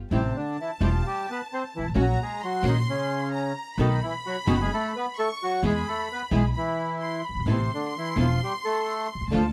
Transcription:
0.00 0.11 B3 medium
0.00 0.12 F4 medium
0.10 0.31 A1 medium
0.10 0.34 C3 medium
0.10 0.20 E3 medium
0.10 0.20 G3 medium
0.10 0.30 A3 medium
0.10 0.30 C4 medium
0.10 0.20 C4 medium
0.10 0.36 C4 medium
0.10 0.21 E4 medium
0.10 0.31 G4 medium
0.10 1.92 A5 loud
0.36 0.57 D3 medium
0.36 0.57 D4 medium
0.60 0.70 E3 medium
0.60 0.71 E4 medium
0.80 1.00 E1 medium
0.80 0.90 E3 medium
0.80 1.03 F3 medium
0.80 0.90 G3 medium
0.80 1.00 A3 medium
0.80 1.00 C4 medium
0.80 0.90 C4 medium
0.80 0.90 E4 loud
0.80 1.06 F4 medium
0.80 1.00 G4 medium
1.06 1.26 G3 medium
1.06 1.29 G4 medium
1.30 1.40 B3 medium
1.30 1.41 B4 loud
1.53 1.63 C4 medium
1.53 1.64 C5 loud
1.76 1.83 G1 medium
1.76 1.86 E3 medium
1.76 1.87 E4 loud
1.83 1.89 G#1 medium
1.89 1.95 A1 medium
1.94 2.15 A#1 loud
1.94 2.04 A#3 medium
1.94 2.14 A#3 medium
1.94 2.14 C#4 medium
1.94 2.04 C#4 medium
1.94 2.14 F#4 medium
1.94 2.05 F#4 medium
1.94 2.38 A#5 loud
2.00 2.19 F#3 medium
2.00 2.20 F#4 loud
2.22 2.41 G#3 medium
2.22 2.42 G#4 medium
2.41 2.63 F#3 medium
2.41 2.66 F#4 medium
2.41 3.32 C6 loud
2.63 2.82 A#1 loud
2.63 2.82 A#3 medium
2.63 2.72 A#3 medium
2.63 2.82 C#4 medium
2.63 2.73 C#4 medium
2.63 2.82 F#4 loud
2.63 2.73 F#4 loud
2.67 2.76 D#3 medium
2.67 2.77 D#4 medium
2.89 3.52 C#3 medium
2.89 3.53 C#4 medium
3.33 3.75 A#5 medium
3.78 3.97 B1 loud
3.78 3.87 B2 medium
3.78 3.87 D#3 medium
3.78 4.00 D#3 medium
3.78 3.88 A3 medium
3.78 3.97 B3 medium
3.78 3.88 B3 loud
3.78 3.97 D#4 medium
3.78 4.00 D#4 loud
3.78 3.88 F#4 medium
3.78 3.97 A4 medium
3.78 5.15 B5 loud
4.03 4.14 E3 medium
4.03 4.13 E4 medium
4.26 4.37 F#3 medium
4.26 4.36 F#4 medium
4.47 4.66 F#1 loud
4.47 4.55 B2 medium
4.47 4.56 D#3 loud
4.47 4.54 G#3 medium
4.47 4.56 A3 loud
4.47 4.66 B3 medium
4.47 4.56 B3 medium
4.47 4.66 D#4 medium
4.47 4.56 F#4 loud
4.47 4.54 G#4 medium
4.47 4.66 A4 medium
4.54 4.59 F#4 medium
4.61 4.71 G#3 medium
4.61 4.71 G#4 loud
4.74 4.93 A3 medium
4.74 4.93 A4 loud
4.96 5.06 B3 medium
4.96 5.05 B4 loud
5.16 5.29 A3 medium
5.16 5.28 A4 loud
5.16 5.62 C#6 loud
5.43 5.62 F#3 medium
5.43 5.62 F#4 loud
5.62 5.81 E2 loud
5.62 5.71 B2 medium
5.62 5.71 E3 medium
5.62 5.71 G#3 medium
5.62 5.85 G#3 medium
5.62 5.81 B3 medium
5.62 5.71 B3 medium
5.62 5.82 E4 medium
5.62 5.72 E4 medium
5.62 5.82 G#4 medium
5.62 6.52 B5 loud
5.66 5.87 G#4 loud
5.88 6.08 A3 medium
5.88 6.08 A4 medium
6.12 6.22 B3 medium
6.12 6.22 B4 loud
6.30 6.50 B1 medium
6.30 6.40 B2 medium
6.30 6.40 E3 medium
6.30 6.40 G#3 medium
6.30 6.50 B3 medium
6.30 6.41 B3 medium
6.30 6.50 E4 medium
6.30 6.41 E4 medium
6.30 6.50 G#4 medium
6.36 6.45 G#3 medium
6.36 6.45 G#4 medium
6.54 7.22 E3 medium
6.54 6.97 B5 medium
6.58 7.22 E4 medium
7.00 7.24 C6 medium
7.24 7.47 B5 medium
7.29 7.34 F#1 soft
7.35 7.39 G1 medium
7.40 7.45 G#1 medium
7.46 7.66 A1 loud
7.46 7.56 E3 medium
7.46 7.66 B3 medium
7.46 7.56 B3 medium
7.46 7.67 C4 medium
7.46 7.56 C4 medium
7.46 7.56 E4 medium
7.46 7.67 A4 medium
7.46 9.33 C6 loud
7.50 7.71 C3 medium
7.50 7.71 C4 medium
7.74 7.94 D3 medium
7.74 7.94 D4 medium
7.98 8.17 E3 medium
7.98 8.17 E4 medium
8.16 8.36 E1 loud
8.16 8.25 E3 medium
8.16 8.36 B3 medium
8.16 8.26 B3 loud
8.16 8.36 C4 medium
8.16 8.26 C4 medium
8.16 8.26 E4 medium
8.16 8.36 A4 medium
8.20 8.40 F3 medium
8.20 8.40 F4 medium
8.43 8.53 G3 medium
8.43 8.53 G4 medium
8.65 9.08 A3 medium
8.65 9.07 A4 loud
9.15 9.21 B1 medium
9.21 9.27 C2 medium
9.28 9.33 C#2 medium
9.28 9.41 D3 medium
9.28 9.41 A3 medium
9.28 9.41 D4 loud
9.28 9.53 A5 loud
9.32 9.53 D2 loud
9.32 9.45 F3 medium
9.32 9.52 D4 medium
9.32 9.41 F4 medium
9.32 9.52 F4 medium
9.32 9.52 A4 medium
9.37 9.46 F4 medium

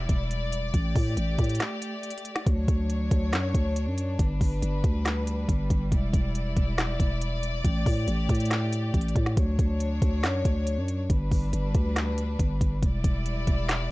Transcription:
0.00 0.72 G3 medium
0.00 0.72 E4 medium
0.00 2.43 D5 medium
0.09 0.71 E1 loud
0.09 kick medium
0.09 closed hi-hat medium
0.31 closed hi-hat medium
0.52 closed hi-hat medium
0.74 0.95 A1 loud
0.74 2.45 A3 medium
0.74 2.45 G4 medium
0.74 kick loud
0.74 closed hi-hat medium
0.96 1.16 A2 loud
0.96 kick loud
0.96 open hi-hat medium
1.17 1.38 A1 loud
1.17 closed hi-hat medium
1.39 1.59 A2 loud
1.39 kick loud
1.39 closed hi-hat medium
1.44 closed hi-hat medium
1.49 closed hi-hat medium
1.55 closed hi-hat medium
1.60 snare loud
1.60 clap medium
1.60 closed hi-hat medium
1.82 closed hi-hat medium
2.03 closed hi-hat medium
2.11 closed hi-hat medium
2.18 closed hi-hat medium
2.25 closed hi-hat medium
2.36 snare medium
2.47 2.67 D2 loud
2.47 4.18 F#3 medium
2.47 5.88 D4 medium
2.47 4.18 C#5 medium
2.47 kick loud
2.47 closed hi-hat medium
2.68 3.10 D2 loud
2.68 kick loud
2.68 closed hi-hat medium
2.90 closed hi-hat medium
3.11 3.34 D2 loud
3.11 kick loud
3.11 closed hi-hat medium
3.33 3.53 F#2 loud
3.33 snare loud
3.33 clap medium
3.33 closed hi-hat medium
3.54 3.88 D2 loud
3.54 kick medium
3.54 closed hi-hat medium
3.76 closed hi-hat medium
3.87 4.18 F#2 loud
3.98 closed hi-hat medium
4.19 4.40 G1 loud
4.19 7.61 G3 medium
4.19 5.90 B4 medium
4.19 kick loud
4.19 closed hi-hat medium
4.41 4.62 G1 loud
4.41 kick loud
4.41 open hi-hat medium
4.62 4.83 G1 loud
4.62 closed hi-hat medium
4.84 5.46 D2 loud
4.84 kick loud
4.84 closed hi-hat medium
5.06 snare loud
5.06 clap loud
5.06 closed hi-hat medium
5.27 closed hi-hat medium
5.49 5.69 G1 loud
5.49 kick medium
5.49 closed hi-hat medium
5.70 5.91 G1 loud
5.70 kick loud
5.70 closed hi-hat medium
5.92 6.13 E1 loud
5.92 7.63 E4 medium
5.92 9.34 D5 medium
5.92 kick loud
5.92 closed hi-hat medium
6.14 6.55 E1 loud
6.14 kick loud
6.14 closed hi-hat medium
6.35 closed hi-hat medium
6.57 6.98 E1 loud
6.57 kick loud
6.57 closed hi-hat medium
6.78 snare loud
6.78 clap medium
6.78 closed hi-hat medium
7.00 7.62 E1 loud
7.00 kick medium
7.00 closed hi-hat medium
7.21 closed hi-hat medium
7.43 closed hi-hat medium
7.64 7.85 A1 loud
7.64 9.36 A3 medium
7.64 9.35 G4 medium
7.64 kick loud
7.64 closed hi-hat medium
7.86 8.07 A2 loud
7.86 kick loud
7.86 open hi-hat medium
8.08 8.28 A1 loud
8.08 closed hi-hat medium
8.29 8.91 A2 loud
8.29 kick loud
8.29 closed hi-hat medium
8.35 closed hi-hat medium
8.40 closed hi-hat medium
8.45 closed hi-hat medium
8.51 snare loud
8.51 clap loud
8.51 closed hi-hat medium
8.73 closed hi-hat medium
8.94 9.15 A1 loud
8.94 kick medium
8.94 closed hi-hat medium
9.01 closed hi-hat medium
9.08 closed hi-hat medium
9.16 9.36 A2 loud
9.16 kick medium
9.16 closed hi-hat medium
9.26 snare medium
9.37 9.58 D2 loud
9.37 11.08 F#3 medium
9.37 11.08 D4 medium
9.37 11.08 C#5 medium
9.37 kick loud
9.37 closed hi-hat medium
9.59 10.00 D2 loud
9.59 kick loud
9.59 closed hi-hat medium
9.80 closed hi-hat medium
10.02 10.25 D2 loud
10.02 kick loud
10.02 closed hi-hat medium
10.23 10.44 F#2 loud
10.23 snare loud
10.23 clap loud
10.23 closed hi-hat medium
10.45 10.79 D2 loud
10.45 kick medium
10.45 closed hi-hat medium
10.67 closed hi-hat medium
10.77 11.08 F#2 loud
10.88 closed hi-hat medium
11.10 11.31 G1 loud
11.10 12.81 G3 medium
11.10 12.81 D4 medium
11.10 12.81 B4 medium
11.10 kick loud
11.10 closed hi-hat medium
11.31 11.52 G1 loud
11.31 kick loud
11.31 open hi-hat medium
11.53 11.74 G1 loud
11.53 closed hi-hat medium
11.75 12.37 D2 loud
11.75 kick loud
11.75 closed hi-hat medium
11.96 snare loud
11.96 clap medium
11.96 closed hi-hat medium
12.18 closed hi-hat medium
12.39 12.60 G1 loud
12.39 kick medium
12.39 closed hi-hat medium
12.61 12.82 G1 loud
12.61 kick loud
12.61 closed hi-hat medium
12.83 13.03 E1 loud
12.83 13.91 G3 medium
12.83 13.91 E4 medium
12.83 13.91 D5 medium
12.83 kick loud
12.83 closed hi-hat medium
13.04 13.46 E1 loud
13.04 kick loud
13.04 closed hi-hat medium
13.26 closed hi-hat medium
13.47 13.89 E1 loud
13.47 kick loud
13.47 closed hi-hat medium
13.69 snare loud
13.69 clap medium
13.69 closed hi-hat medium

